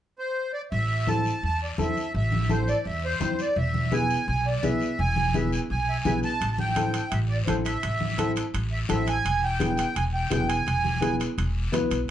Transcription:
0.19 accordion C5
0.53 accordion D5
0.72 upright bass A1, accordion E5, long guiro
1.07 upright piano C4 E4 A4, accordion A5, high conga, short guiro
1.25 short guiro
1.43 upright bass E2, accordion A5, long guiro
1.64 accordion D5
1.78 upright bass E2, upright piano C4 E4 A4, accordion E5, high conga, short guiro
1.97 short guiro
2.14 upright bass A1, accordion E5, long guiro
2.32 high conga
2.49 upright piano C4 E4 A4, accordion C5, high conga, short guiro
2.68 accordion D5, short guiro
2.85 upright bass E2, accordion E5, long guiro
3.05 accordion C5
3.20 upright bass E2, upright piano C4 E4 C5, high conga, short guiro
3.39 accordion D5, short guiro
3.56 upright bass E1, accordion E5, long guiro
3.74 high conga
3.92 upright piano B3 E4 G#4, accordion G#5, high conga, short guiro
4.10 short guiro
4.28 upright bass B1, accordion G#5, long guiro
4.46 accordion D5
4.63 upright bass B1, upright piano B3 E4 G#4, accordion E5, high conga, short guiro
4.81 short guiro
4.99 upright bass E1, accordion G#5, long guiro
5.16 high conga
5.34 upright piano B3 E4 G#4, accordion E5, high conga, short guiro
5.52 accordion G#5, short guiro
5.70 upright bass B1, accordion G#5, long guiro
5.89 accordion E5
6.05 upright bass B1, upright piano B3 E4 G#4, accordion E5, high conga, short guiro
6.23 accordion A5, short guiro
6.41 upright bass A1, high timbale, long guiro
6.52 accordion A5
6.58 accordion G5, high conga
6.76 upright piano C4 E4 A4, high conga, high timbale, short guiro
6.94 accordion G5, high timbale, short guiro
7.11 upright bass A1, accordion E5, high timbale, long guiro
7.29 accordion D5
7.46 upright bass A1, upright piano C4 E4 A4, accordion C5, high conga, high timbale, short guiro
7.65 accordion E5, high timbale, short guiro
7.83 upright bass A1, high timbale, long guiro
8.01 high conga
8.18 upright piano C4 E4 A4, high conga, high timbale, short guiro
8.36 high timbale, short guiro
8.54 upright bass A1, high timbale, long guiro
8.72 accordion E5
8.89 upright bass A1, upright piano C4 E4 A4, accordion E5, high conga, high timbale, short guiro
9.06 accordion G#5, high timbale, short guiro
9.25 upright bass E1, high timbale, long guiro
9.44 accordion G5
9.60 upright piano B3 E4 G#4, high conga, high timbale, short guiro
9.77 accordion G5, high timbale, short guiro
9.95 upright bass E1, accordion G#5, high timbale, long guiro
10.14 accordion G5
10.30 upright bass E1, upright piano B3 E4 G#4, accordion G5, high conga, high timbale, low timbale, short guiro
10.48 accordion G#5, high timbale, short guiro
10.67 upright bass E1, high timbale, long guiro
10.84 high conga
11.01 upright piano B3 E4 G#4, high conga, high timbale, short guiro
11.20 high timbale, short guiro
11.38 upright bass E1, high timbale, long guiro
11.72 upright bass D2, upright piano B3 E4 B4, high conga, high timbale, low timbale, short guiro
11.91 upright bass B1, high timbale, short guiro

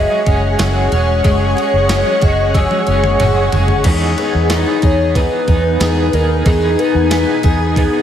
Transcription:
Already playing: clean electric guitar F#3 G#3 C#4 G#4, twelve-string acoustic guitar C#4 F#4, ambient pad G#4 C#5 F#5 C#6, soft synth lead D#5
0.27 fingered electric bass F#1, clean electric guitar G#3 C#4 G#4, kick, ride
0.59 fingered electric bass F#1, clean electric guitar F#3 G#3 C#4 G#4, twelve-string acoustic guitar F#4, snare, ride, tambourine
0.92 fingered electric bass E1, clean electric guitar C#4 G#4, soft synth lead C#5, ride
0.96 clean electric guitar G#3
1.24 fingered electric bass F#1, clean electric guitar F#3 G#3 C#4 G#4, twelve-string acoustic guitar F#4, soft synth lead C#5, kick, ride
1.57 clean electric guitar G#3 C#4 G#4, ride
1.73 fingered electric bass F#1
1.89 clean electric guitar F#3 G#3 C#4 G#4, snare, ride, tambourine
2.22 fingered electric bass F#1, clean electric guitar G#3 C#4 G#4, twelve-string acoustic guitar F#4, soft synth lead D#5, kick, ride
2.54 clean electric guitar F#3 G#3 C#4, soft synth lead C#5, glockenspiel E6, kick, high tom, ride
2.58 clean electric guitar G#4
2.71 high tom
2.87 fingered electric bass F#1, clean electric guitar C#4 G#4, ride
2.92 clean electric guitar G#3
3.04 mid tom
3.20 fingered electric bass F#1, clean electric guitar F#3 G#3 C#4 G#4, twelve-string acoustic guitar F#4, mid tom, ride
3.52 fingered electric bass F#1, clean electric guitar G#3 C#4 G#4, floor tom, ride
3.68 floor tom
3.84 fingered electric bass E2, twelve-string acoustic guitar D#3, clean electric guitar E3 B3 D#4, ambient pad B3 G#5, glockenspiel B6, kick, crash, ride
3.88 clean electric guitar G#4
4.18 clean electric guitar B3 D#4 G#4, ride
4.35 fingered electric bass E2
4.50 clean electric guitar E3 B3 D#4 G#4, snare, ride, tambourine
4.82 fingered electric bass E2, clean electric guitar D#4 G#4, soft synth lead C#5, kick, ride
4.86 clean electric guitar B3
5.15 clean electric guitar E3 B3 D#4, soft synth lead B4, kick, ride
5.19 clean electric guitar G#4
5.47 fingered electric bass E2, clean electric guitar B3 D#4 G#4, kick, ride
5.80 fingered electric bass E2, clean electric guitar E3 B3 D#4 G#4, snare, ride, tambourine
6.13 fingered electric bass D#2, clean electric guitar B3 D#4 G#4, soft synth lead A#4, ride
6.46 fingered electric bass E2, twelve-string acoustic guitar D#3, clean electric guitar E3 B3 D#4 G#4, soft synth lead G#4, kick, ride
6.77 clean electric guitar B3 D#4 G#4, soft synth lead B4, ride
6.95 fingered electric bass E2
7.10 clean electric guitar E3 B3 D#4 G#4, soft synth lead B4, glockenspiel B6, snare, ride, tambourine
7.43 fingered electric bass E2, clean electric guitar B3 D#4 G#4, soft synth lead G#4, kick, ride
7.75 clean electric guitar E3 B3 D#4, soft synth lead G#4, kick, ride
7.80 clean electric guitar G#4

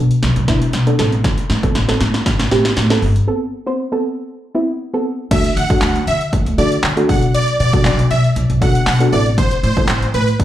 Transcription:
Already playing: upright bass B2, synth pluck B3 D4 A4
0.11 closed hi-hat
0.23 upright bass B1, snare, closed hi-hat
0.36 upright bass B1, closed hi-hat
0.48 upright bass B2, synth pluck B3 D4 E4, kick, snare, closed hi-hat
0.62 closed hi-hat
0.73 upright bass B2, snare, closed hi-hat
0.87 synth pluck B3 D4 A4, closed hi-hat
0.99 upright bass A1, synth pluck B3 C4 A4, snare, closed hi-hat
1.12 closed hi-hat
1.24 kick, snare, closed hi-hat
1.38 closed hi-hat
1.50 upright bass A2, snare, closed hi-hat
1.63 upright bass A2, synth pluck B3 C4 A4, kick, closed hi-hat
1.75 upright bass A1, snare, closed hi-hat
1.88 synth pluck B3 C4 A4, snare, closed hi-hat
2.01 upright bass A2, snare, closed hi-hat
2.14 snare, closed hi-hat
2.26 upright bass A1, kick, snare, closed hi-hat
2.39 upright bass A1, snare, closed hi-hat
2.51 upright bass A2, synth pluck B3 C4 G4, snare, closed hi-hat
2.65 snare, closed hi-hat
2.77 upright bass A2, snare, closed hi-hat
2.90 synth pluck B3 C4 A4, snare, closed hi-hat
3.02 upright bass G1, open hi-hat
3.16 closed hi-hat
3.27 synth pluck B3 C4 A4
3.66 synth pluck B3 C4 C5
3.92 synth pluck B3 C4 A4
4.55 synth pluck B3 C4 E4
4.94 synth pluck B3 C4 A4
5.31 upright bass D2, synth pluck A3 D4 F#4 A4, supersaw synth E5, kick, closed hi-hat, crash
5.45 closed hi-hat
5.57 upright bass D3, supersaw synth F#5, closed hi-hat
5.70 upright bass D3, synth pluck A3 D4 F#4 A4, kick, closed hi-hat
5.81 upright bass D2, snare, clap, closed hi-hat
5.96 closed hi-hat
6.07 upright bass D3, supersaw synth E5, closed hi-hat
6.21 closed hi-hat
6.33 upright bass D2, kick, closed hi-hat
6.46 upright bass D2, closed hi-hat
6.58 upright bass D3, synth pluck A3 D4 F#4 A4, supersaw synth D5, closed hi-hat
6.72 closed hi-hat
6.83 upright bass D3, snare, clap, closed hi-hat
6.97 synth pluck A3 D4 F#4 A4, closed hi-hat
7.09 upright bass B1, synth pluck B3 D4 F#4 A4, supersaw synth F#5, kick, open hi-hat
7.22 closed hi-hat
7.34 supersaw synth D5, closed hi-hat
7.48 closed hi-hat
7.60 upright bass B2, supersaw synth D5, closed hi-hat
7.73 upright bass B2, synth pluck B3 D4 F#4 A4, kick, closed hi-hat
7.84 upright bass B1, snare, clap, closed hi-hat
7.99 closed hi-hat
8.11 upright bass B2, supersaw synth E5, closed hi-hat
8.24 closed hi-hat
8.36 upright bass B1, closed hi-hat
8.50 upright bass B1, closed hi-hat
8.61 upright bass B2, synth pluck B3 D4 F#4 A4, supersaw synth F#5, kick, closed hi-hat
8.75 closed hi-hat
8.86 upright bass B2, supersaw synth F#5, snare, clap, closed hi-hat
9.00 synth pluck B3 D4 F#4 A4, closed hi-hat
9.12 upright bass A1, synth pluck B3 C4 E4 A4, supersaw synth D5, open hi-hat
9.26 closed hi-hat
9.38 supersaw synth C5, kick, closed hi-hat
9.51 closed hi-hat
9.63 upright bass A2, supersaw synth C5, closed hi-hat
9.76 upright bass A2, synth pluck B3 C4 E4 A4, kick, closed hi-hat
9.88 upright bass A1, snare, clap, closed hi-hat
10.02 closed hi-hat
10.14 upright bass A2, supersaw synth B4, closed hi-hat
10.28 closed hi-hat
10.40 upright bass A1, kick, closed hi-hat

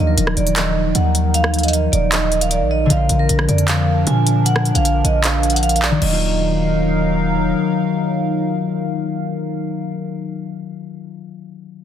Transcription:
Already playing: 808-style bass D#2, analog synth pad D#3 D#4 A#4, harp D#3 F3 F#3 A#3
0.07 vibraphone A#4
0.17 808-style bass D#1, closed hi-hat
0.27 cross-stick
0.37 808-style bass D#1, vibraphone D5, closed hi-hat
0.47 closed hi-hat
0.56 clap, closed hi-hat
0.95 808-style bass D#2, vibraphone F#5, closed hi-hat
1.15 closed hi-hat
1.34 vibraphone F5, closed hi-hat
1.44 cross-stick
1.54 closed hi-hat
1.59 closed hi-hat
1.63 vibraphone D#5, closed hi-hat
1.68 closed hi-hat
1.73 closed hi-hat
1.92 808-style bass D#1, vibraphone D5, closed hi-hat
2.12 clap, closed hi-hat
2.32 closed hi-hat
2.41 vibraphone F5, closed hi-hat
2.51 vibraphone D5, closed hi-hat
2.61 808-style bass A#1
2.71 vibraphone D#5
2.86 harp D3 F3
2.90 808-style bass A#1, analog synth pad F3 D4 A#4, harp A#3, vibraphone F5, closed hi-hat
2.96 harp F4
3.09 808-style bass A#1, closed hi-hat
3.19 vibraphone A#4
3.29 808-style bass A#1, closed hi-hat
3.39 cross-stick
3.48 808-style bass F2, vibraphone D5, closed hi-hat
3.58 closed hi-hat
3.68 vibraphone F5, clap, closed hi-hat
4.07 808-style bass A#2, vibraphone G#5, closed hi-hat
4.27 closed hi-hat
4.46 vibraphone F#5, closed hi-hat
4.56 cross-stick
4.65 closed hi-hat
4.75 808-style bass A#1, vibraphone F5, closed hi-hat
4.85 closed hi-hat
5.04 808-style bass A#1, vibraphone D#5, closed hi-hat
5.24 clap, closed hi-hat
5.43 closed hi-hat
5.50 vibraphone F#5, closed hi-hat
5.56 closed hi-hat
5.63 vibraphone F5, closed hi-hat
5.69 closed hi-hat
5.76 closed hi-hat
5.82 vibraphone D5, clap
5.91 harp D#3
5.98 808-style bass D#1, harp F#3, analog synth pad F#3 D#4 A#4 F5, vibraphone D#5, crash
6.05 harp A#3
6.13 harp F4

